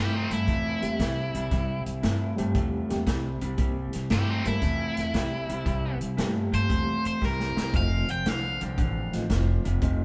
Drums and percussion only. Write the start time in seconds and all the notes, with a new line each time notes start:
0.31 closed hi-hat
0.48 kick, closed hi-hat
0.82 closed hi-hat
1.00 kick, snare, closed hi-hat
1.35 closed hi-hat
1.51 kick, snare, closed hi-hat
1.86 closed hi-hat
2.03 snare, closed hi-hat
2.38 closed hi-hat
2.55 kick, closed hi-hat
2.90 snare, closed hi-hat
3.07 kick, snare, closed hi-hat
3.41 closed hi-hat
3.58 kick, closed hi-hat
3.93 snare, closed hi-hat
4.10 snare, closed hi-hat
4.45 closed hi-hat
4.62 kick, snare, closed hi-hat
4.97 snare, closed hi-hat
5.14 kick, snare, closed hi-hat
5.49 closed hi-hat
5.66 kick, closed hi-hat
6.01 closed hi-hat
6.18 snare, closed hi-hat
6.53 closed hi-hat
6.70 kick, snare, closed hi-hat
7.05 closed hi-hat
7.22 kick, snare
7.40 snare
7.57 snare
7.74 kick, snare, closed hi-hat
8.08 closed hi-hat
8.26 snare, closed hi-hat
8.61 closed hi-hat
8.78 kick, closed hi-hat
9.13 snare, closed hi-hat
9.30 kick, snare, closed hi-hat
9.65 closed hi-hat
9.82 kick, closed hi-hat